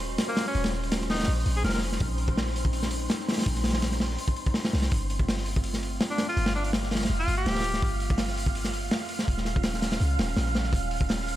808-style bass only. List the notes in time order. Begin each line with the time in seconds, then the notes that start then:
Already playing: D#1
0.55 D#1
1.28 A#1
1.46 A#1
1.64 F1
2.01 A#1
3.46 A#1
4.73 C2
4.92 G1
6.37 G1
7.09 F1
7.28 G1
7.46 D1
7.82 G1
9.28 D#1
10.00 C#2
10.19 D#1
10.37 A#1
10.73 D#1